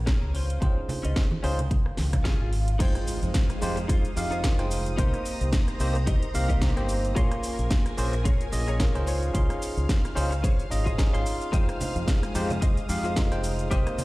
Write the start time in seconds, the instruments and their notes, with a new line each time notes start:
Already playing: fingered electric bass A#1
0.06 clean electric guitar C#4 G#4 A#4, kick, snare, closed hi-hat
0.23 fingered electric bass C#2
0.34 clean electric guitar C#4 F4 C5, open hi-hat
0.50 closed hi-hat
0.60 fingered electric bass C#2, tine electric piano C#4 D#4 F4 G#4 C5, kick, closed hi-hat
0.88 muted clean electric guitar stroke, open hi-hat, low conga
1.03 fingered electric bass C#2, clean electric guitar C#4 F4 D#5, closed hi-hat
1.16 kick, snare, closed hi-hat
1.31 high conga
1.43 fingered electric bass C#2, clean electric guitar C#4 F4 C5, tine electric piano C#4 D#4 F4 G#4 C5, open hi-hat
1.59 closed hi-hat, low conga
1.70 muted clean electric guitar stroke, kick, closed hi-hat, swell
1.86 cross-stick
1.97 fingered electric bass C#2, snare, open hi-hat, high conga
2.13 kick, cross-stick, closed hi-hat, low conga
2.24 clean electric guitar C#4 F4 G#4, kick, snare, closed hi-hat
2.41 fingered electric bass G#1
2.53 open hi-hat
2.68 closed hi-hat
2.79 fingered electric bass F2, tine electric piano G#3 D#4 F4 C5 G5, string machine G#3 F5 D#6, clean electric guitar D#4 F4 G#4 C5, kick, closed hi-hat, crash, impact, cabasa
2.95 cross-stick, closed hi-hat, cabasa
3.07 open hi-hat, cabasa
3.23 fingered electric bass F2, closed hi-hat, cabasa
3.34 kick, snare, closed hi-hat, cabasa
3.50 cross-stick, closed hi-hat, cabasa
3.61 fingered electric bass F2, tine electric piano G#3 D#4 F4 G4 C5, muted clean electric guitar stroke, open hi-hat, cabasa
3.76 muted clean electric guitar stroke, closed hi-hat, cabasa
3.88 clean electric guitar D#4 F4 G#4 C5, kick, closed hi-hat, cabasa
4.05 closed hi-hat, cabasa
4.16 fingered electric bass F2, tine electric piano G#3 D#4 F4 G4 F5, open hi-hat, cabasa
4.31 clean electric guitar D#4 F4 G#4 C5, closed hi-hat, cabasa
4.43 tine electric piano G#3 D#4 F4 G4 A#4, kick, snare, closed hi-hat, cabasa
4.59 fingered electric bass F1, tine electric piano G#3 D#4 F4 C5 G5, cross-stick, closed hi-hat, cabasa
4.71 open hi-hat, cabasa
4.86 closed hi-hat, cabasa
4.97 fingered electric bass C2, tine electric piano A#3 C4 D#4 G4 C5, clean electric guitar D#4 G4 A#4 C5, string machine C5 A#5, kick, closed hi-hat, cabasa
5.14 cross-stick, closed hi-hat, cabasa
5.26 open hi-hat, cabasa
5.41 fingered electric bass C2, closed hi-hat, cabasa
5.53 kick, snare, closed hi-hat, cabasa
5.68 cross-stick, closed hi-hat, cabasa
5.79 fingered electric bass C2, tine electric piano A#3 C4 D#4 G4 C5, muted clean electric guitar stroke, open hi-hat, cabasa
5.94 muted clean electric guitar stroke, closed hi-hat, cabasa
6.06 clean electric guitar D#4 G4 A#4 D#5, kick, closed hi-hat, cabasa
6.23 closed hi-hat, cabasa
6.34 fingered electric bass C2, tine electric piano A#3 C4 D#4 G4 F5, open hi-hat, cabasa
6.49 clean electric guitar D#4 G4 A#4 D#5, kick, closed hi-hat, cabasa
6.61 tine electric piano A#3 C4 D#4 G4 A#4, kick, snare, closed hi-hat, cabasa
6.76 fingered electric bass G1, tine electric piano A#3 C4 D#4 G4 C5, cross-stick, closed hi-hat, cabasa
6.89 open hi-hat, cabasa
7.05 closed hi-hat, cabasa
7.15 fingered electric bass A#1, tine electric piano A#3 C#4 F4 G#4 C6, clean electric guitar F4 G#4 A#4 C#5, string machine A#4 G#5, kick, closed hi-hat, cabasa
7.31 cross-stick, closed hi-hat, cabasa
7.43 open hi-hat, cabasa
7.59 fingered electric bass A#1, closed hi-hat, cabasa
7.71 kick, snare, closed hi-hat, cabasa
7.86 cross-stick, closed hi-hat, cabasa
7.97 fingered electric bass A#1, tine electric piano A#3 C#4 F4 G#4 C5, muted clean electric guitar stroke, open hi-hat, cabasa
8.12 muted clean electric guitar stroke, closed hi-hat, cabasa
8.24 clean electric guitar F4 G#4 A#4 C#5, kick, closed hi-hat, cabasa
8.41 closed hi-hat, cabasa
8.52 fingered electric bass A#1, tine electric piano A#3 C#4 F4 G#4 D#5, open hi-hat, cabasa
8.67 clean electric guitar F4 G#4 A#4 C#5, closed hi-hat, cabasa
8.80 tine electric piano A#3 C#4 F4 G#4 A#4, kick, snare, closed hi-hat, cabasa
8.95 fingered electric bass C#2, tine electric piano C#4 D#4 F4 G#4 C5, cross-stick, closed hi-hat, cabasa
9.06 clean electric guitar F4 G#4 C5 C#5, string machine F5, open hi-hat, cabasa
9.23 closed hi-hat, cabasa
9.33 fingered electric bass C#2, tine electric piano C#4 D#4 F4 G#4 C6, kick, closed hi-hat, cabasa
9.50 cross-stick, closed hi-hat, cabasa
9.62 open hi-hat, cabasa
9.77 fingered electric bass C#2, closed hi-hat, cabasa
9.89 kick, snare, closed hi-hat, cabasa
10.05 cross-stick, closed hi-hat, cabasa
10.15 fingered electric bass C#2, tine electric piano C#4 D#4 F4 G#4 C5, muted clean electric guitar stroke, open hi-hat, cabasa
10.31 muted clean electric guitar stroke, closed hi-hat, cabasa
10.43 clean electric guitar F4 G#4 C5 C#5, kick, closed hi-hat, cabasa
10.60 closed hi-hat, cabasa
10.70 fingered electric bass G#1, tine electric piano C#4 D#4 F4 G#4 D#5, open hi-hat, cabasa
10.85 clean electric guitar F4 G#4 C5 D#5, kick, closed hi-hat, cabasa
10.98 tine electric piano C#4 D#4 F4 G#4 A#4, kick, snare, closed hi-hat, cabasa
11.13 fingered electric bass G#1, tine electric piano C#4 D#4 F4 G#4 C6, cross-stick, closed hi-hat, cabasa
11.26 open hi-hat, cabasa
11.42 closed hi-hat, cabasa
11.52 fingered electric bass F2, tine electric piano G#3 D#4 F4 C5 G5, string machine G#3 D#6, clean electric guitar F4 G#4 C5 D#5, kick, closed hi-hat, cabasa
11.69 cross-stick, closed hi-hat, cabasa
11.81 open hi-hat, low conga, cabasa
11.96 fingered electric bass F2, closed hi-hat, cabasa
12.08 kick, snare, closed hi-hat, cabasa
12.23 cross-stick, closed hi-hat, cabasa
12.34 fingered electric bass F2, tine electric piano G#3 D#4 F4 G4 C5, muted clean electric guitar stroke, open hi-hat, cabasa
12.49 muted clean electric guitar stroke, closed hi-hat, low conga, cabasa
12.61 clean electric guitar F4 G#4 C5 D#5, kick, closed hi-hat, cabasa
12.77 closed hi-hat, cabasa
12.89 fingered electric bass F2, tine electric piano G#3 D#4 F4 G4 F5, open hi-hat, cabasa
13.04 clean electric guitar F4 G#4 C5 D#5, closed hi-hat, cabasa
13.16 tine electric piano G#3 D#4 F4 G4 A#4, kick, snare, closed hi-hat, cabasa
13.31 fingered electric bass F1, tine electric piano G#3 D#4 F4 C5 G5, cross-stick, closed hi-hat, cabasa
13.44 open hi-hat, cabasa
13.59 closed hi-hat, cabasa
13.70 fingered electric bass C2, tine electric piano A#3 C4 D#4 G4 C5, clean electric guitar G4 A#4 C5 D#5, string machine C5 A#5 D#6, kick, closed hi-hat, cabasa
13.87 cross-stick, closed hi-hat, cabasa
13.98 open hi-hat, low conga, cabasa